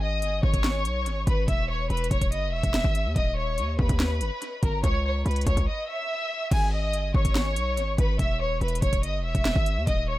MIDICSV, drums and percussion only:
0, 0, Header, 1, 2, 480
1, 0, Start_track
1, 0, Key_signature, 5, "minor"
1, 0, Tempo, 419580
1, 1693, Time_signature, 4, 2, 24, 8
1, 11653, End_track
2, 0, Start_track
2, 0, Title_t, "Drums"
2, 253, Note_on_c, 9, 42, 70
2, 367, Note_off_c, 9, 42, 0
2, 493, Note_on_c, 9, 36, 95
2, 608, Note_off_c, 9, 36, 0
2, 613, Note_on_c, 9, 36, 88
2, 613, Note_on_c, 9, 42, 86
2, 728, Note_off_c, 9, 36, 0
2, 728, Note_off_c, 9, 42, 0
2, 734, Note_on_c, 9, 38, 118
2, 848, Note_off_c, 9, 38, 0
2, 974, Note_on_c, 9, 42, 93
2, 1088, Note_off_c, 9, 42, 0
2, 1214, Note_on_c, 9, 42, 76
2, 1328, Note_off_c, 9, 42, 0
2, 1454, Note_on_c, 9, 36, 97
2, 1454, Note_on_c, 9, 42, 75
2, 1568, Note_off_c, 9, 42, 0
2, 1569, Note_off_c, 9, 36, 0
2, 1694, Note_on_c, 9, 36, 117
2, 1694, Note_on_c, 9, 42, 78
2, 1808, Note_off_c, 9, 36, 0
2, 1808, Note_off_c, 9, 42, 0
2, 2174, Note_on_c, 9, 42, 43
2, 2255, Note_off_c, 9, 42, 0
2, 2255, Note_on_c, 9, 42, 58
2, 2334, Note_off_c, 9, 42, 0
2, 2334, Note_on_c, 9, 42, 76
2, 2414, Note_off_c, 9, 42, 0
2, 2414, Note_on_c, 9, 36, 97
2, 2414, Note_on_c, 9, 42, 86
2, 2528, Note_off_c, 9, 36, 0
2, 2528, Note_off_c, 9, 42, 0
2, 2534, Note_on_c, 9, 36, 92
2, 2534, Note_on_c, 9, 42, 88
2, 2648, Note_off_c, 9, 36, 0
2, 2648, Note_off_c, 9, 42, 0
2, 2654, Note_on_c, 9, 42, 78
2, 2768, Note_off_c, 9, 42, 0
2, 3014, Note_on_c, 9, 36, 99
2, 3014, Note_on_c, 9, 42, 86
2, 3128, Note_off_c, 9, 36, 0
2, 3128, Note_off_c, 9, 42, 0
2, 3134, Note_on_c, 9, 38, 112
2, 3248, Note_off_c, 9, 38, 0
2, 3253, Note_on_c, 9, 36, 101
2, 3367, Note_off_c, 9, 36, 0
2, 3374, Note_on_c, 9, 42, 78
2, 3488, Note_off_c, 9, 42, 0
2, 3614, Note_on_c, 9, 36, 121
2, 3614, Note_on_c, 9, 42, 80
2, 3728, Note_off_c, 9, 36, 0
2, 3728, Note_off_c, 9, 42, 0
2, 4094, Note_on_c, 9, 42, 68
2, 4208, Note_off_c, 9, 42, 0
2, 4334, Note_on_c, 9, 36, 92
2, 4448, Note_off_c, 9, 36, 0
2, 4453, Note_on_c, 9, 36, 89
2, 4453, Note_on_c, 9, 42, 88
2, 4568, Note_off_c, 9, 36, 0
2, 4568, Note_off_c, 9, 42, 0
2, 4574, Note_on_c, 9, 38, 126
2, 4688, Note_off_c, 9, 38, 0
2, 4814, Note_on_c, 9, 42, 92
2, 4928, Note_off_c, 9, 42, 0
2, 5054, Note_on_c, 9, 42, 74
2, 5168, Note_off_c, 9, 42, 0
2, 5293, Note_on_c, 9, 42, 78
2, 5294, Note_on_c, 9, 36, 93
2, 5407, Note_off_c, 9, 42, 0
2, 5409, Note_off_c, 9, 36, 0
2, 5533, Note_on_c, 9, 36, 114
2, 5533, Note_on_c, 9, 42, 79
2, 5647, Note_off_c, 9, 42, 0
2, 5648, Note_off_c, 9, 36, 0
2, 6013, Note_on_c, 9, 42, 42
2, 6073, Note_off_c, 9, 42, 0
2, 6073, Note_on_c, 9, 42, 53
2, 6133, Note_off_c, 9, 42, 0
2, 6133, Note_on_c, 9, 42, 67
2, 6193, Note_off_c, 9, 42, 0
2, 6193, Note_on_c, 9, 42, 76
2, 6253, Note_off_c, 9, 42, 0
2, 6253, Note_on_c, 9, 36, 95
2, 6253, Note_on_c, 9, 42, 86
2, 6368, Note_off_c, 9, 36, 0
2, 6368, Note_off_c, 9, 42, 0
2, 6373, Note_on_c, 9, 36, 93
2, 6373, Note_on_c, 9, 42, 89
2, 6487, Note_off_c, 9, 36, 0
2, 6488, Note_off_c, 9, 42, 0
2, 7453, Note_on_c, 9, 36, 122
2, 7453, Note_on_c, 9, 42, 81
2, 7453, Note_on_c, 9, 49, 101
2, 7568, Note_off_c, 9, 36, 0
2, 7568, Note_off_c, 9, 42, 0
2, 7568, Note_off_c, 9, 49, 0
2, 7933, Note_on_c, 9, 42, 70
2, 8047, Note_off_c, 9, 42, 0
2, 8173, Note_on_c, 9, 36, 99
2, 8288, Note_off_c, 9, 36, 0
2, 8292, Note_on_c, 9, 42, 89
2, 8293, Note_on_c, 9, 36, 91
2, 8407, Note_off_c, 9, 36, 0
2, 8407, Note_off_c, 9, 42, 0
2, 8413, Note_on_c, 9, 38, 122
2, 8527, Note_off_c, 9, 38, 0
2, 8653, Note_on_c, 9, 42, 96
2, 8767, Note_off_c, 9, 42, 0
2, 8893, Note_on_c, 9, 42, 76
2, 9007, Note_off_c, 9, 42, 0
2, 9133, Note_on_c, 9, 42, 79
2, 9134, Note_on_c, 9, 36, 94
2, 9247, Note_off_c, 9, 42, 0
2, 9248, Note_off_c, 9, 36, 0
2, 9373, Note_on_c, 9, 36, 116
2, 9373, Note_on_c, 9, 42, 81
2, 9487, Note_off_c, 9, 42, 0
2, 9488, Note_off_c, 9, 36, 0
2, 9853, Note_on_c, 9, 42, 43
2, 9933, Note_off_c, 9, 42, 0
2, 9933, Note_on_c, 9, 42, 61
2, 10013, Note_off_c, 9, 42, 0
2, 10013, Note_on_c, 9, 42, 77
2, 10093, Note_off_c, 9, 42, 0
2, 10093, Note_on_c, 9, 42, 89
2, 10094, Note_on_c, 9, 36, 97
2, 10207, Note_off_c, 9, 42, 0
2, 10208, Note_off_c, 9, 36, 0
2, 10213, Note_on_c, 9, 36, 90
2, 10213, Note_on_c, 9, 42, 89
2, 10328, Note_off_c, 9, 36, 0
2, 10328, Note_off_c, 9, 42, 0
2, 10333, Note_on_c, 9, 42, 82
2, 10448, Note_off_c, 9, 42, 0
2, 10694, Note_on_c, 9, 36, 100
2, 10694, Note_on_c, 9, 42, 86
2, 10808, Note_off_c, 9, 36, 0
2, 10808, Note_off_c, 9, 42, 0
2, 10814, Note_on_c, 9, 38, 121
2, 10928, Note_off_c, 9, 38, 0
2, 10933, Note_on_c, 9, 36, 106
2, 11047, Note_off_c, 9, 36, 0
2, 11053, Note_on_c, 9, 42, 77
2, 11168, Note_off_c, 9, 42, 0
2, 11293, Note_on_c, 9, 36, 120
2, 11293, Note_on_c, 9, 42, 83
2, 11407, Note_off_c, 9, 42, 0
2, 11408, Note_off_c, 9, 36, 0
2, 11653, End_track
0, 0, End_of_file